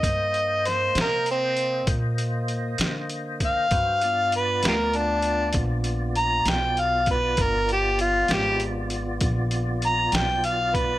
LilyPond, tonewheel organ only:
\new Staff \with { instrumentName = "Tonewheel organ" } { \time 12/8 \key g \phrygian \tempo 4. = 65 <bes c'' ees''>1. | <fis' b' c''>8 <b f' d''>1~ <b f' d''>4. | <b f' d''>1. | }